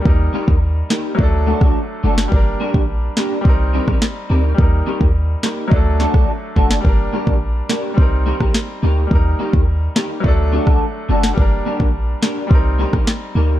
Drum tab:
SD |------o----r---o|------o----ro---|------o---or---o|------o----ro---|
BD |o--o----o--o----|o--o----o--o----|o--o----o--o--o-|o--o----o--o----|

SD |------o----r---o|------o----ro---|
BD |o--o----o--o----|o--o----o--o----|